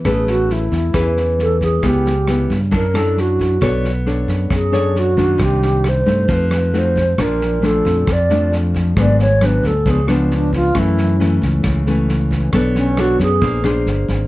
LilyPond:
<<
  \new Staff \with { instrumentName = "Alto flute" } { \time 4/4 \key fis \minor \tempo 4 = 135 gis'8 fis'8 e'4. r8 a'8 gis'8 | g'4. r8 ais'8 a'8 fis'4~ | fis'8 r4. gis'4 fis'4 | g'4 c''4 b'4 c''4 |
bes'4 a'4 d''4 r4 | d''8 cis''8 b'8 a'8 gis'8 b8 d'8 eis'8 | e'4. r2 r8 | r8 cis'8 fis'8 gis'4 r4. | }
  \new Staff \with { instrumentName = "Nylon-string guitar" } { \time 4/4 \key fis \minor << { <cis' gis' b'>4. r8 <cis' gis' b'>2 | <b e' g'>8 r8 <b e' g'>8 r8 <d' e' ais'>8 <d' e' ais'>4. | <d' a' cis''>8 r8 <d' a' cis''>4 r8 <d' a' cis''>4 <dis bes d'>8~ | <dis bes d'>4. <a ees'>4. <a ees' ges'>8 r8 |
<f d'>4 <f a d'>4 r8 <f a d'>4. | <fis b d'>8 r8 <fis b d'>8 r8 <eis b d'>8 <eis b d'>4. | <e a cis'>4 <e a cis'>4. <e a cis'>4. | <d' a' cis''>4 <d' a' cis''>8 r8 <d' aes' c''>8 <d' aes' c''>4. | } \\ { a2 e2 | cis2 fis2 | b2 fis2 | c2 f2 |
bes,2 f,2 | gis,2 cis2 | fis,2 cis2 | b2 bes2 | } >> }
  \new Staff \with { instrumentName = "Fingered electric bass" } { \clef bass \time 4/4 \key fis \minor a,,4. e,8 e,2 | cis,4. g,8 fis,2 | b,,4. fis,8 fis,2 | c,4. g,8 f,2 |
bes,,4. f,8 f,2 | gis,,4. d,8 cis,2 | fis,4. cis,8 cis,2 | b,,4. fis,8 bes,,4 g,,8 aes,,8 | }
  \new DrumStaff \with { instrumentName = "Drums" } \drummode { \time 4/4 <bd ss sn>8 sn8 sn8 <bd sn>8 <bd ss sn>8 sn8 sn8 <bd sn>8 | <bd ss sn>8 sn8 <ss sn>8 <bd sn>8 <bd sn>8 <ss sn>8 sn8 <bd sn>8 | <bd ss sn>8 sn8 sn8 <bd sn>8 <bd ss sn>8 sn8 sn8 <bd sn>8 | <bd ss sn>8 sn8 <ss sn>8 <bd sn>8 <bd sn>8 <ss sn>8 sn8 <bd sn>8 |
<bd ss sn>8 sn8 sn8 <bd sn>8 <bd ss sn>8 sn8 sn8 <bd sn>8 | <bd ss sn>8 sn8 <ss sn>8 <bd sn>8 <bd sn>8 <ss sn>8 sn8 <bd sn>8 | <bd ss sn>8 sn8 sn8 <bd sn>8 <bd ss sn>8 sn8 sn8 <bd sn>8 | <bd ss sn>8 sn8 <ss sn>8 <bd sn>8 <bd sn>8 <ss sn>8 sn8 <bd sn>8 | }
>>